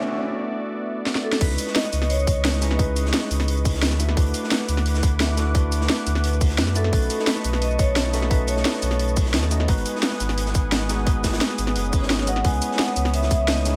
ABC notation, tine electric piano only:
X:1
M:4/4
L:1/8
Q:1/4=174
K:C#m
V:1 name="Tine electric piano"
z8 | [G,CDEB]6 [G,CDEd] [G,CDEG] | [G,CDEB]6- [G,CDEB] [A,=DEFe] | [A,=DEFB]6 [A,DEFe] [A,DEFA] |
[A,=DEFB]6- [A,DEFB] [A,DEFe] | [A,CDFB]6 [A,CDFd] [A,CDFA] | [A,CDFB]6- [A,CDFB] [A,CDFd] | [G,B,DFB]6 [G,B,DFd] [G,B,DFG] |
[G,B,DFB]6- [G,B,DFB] [G,B,DFd] | [G,B,CEB]6 [G,CDEd] [G,CDEG] |]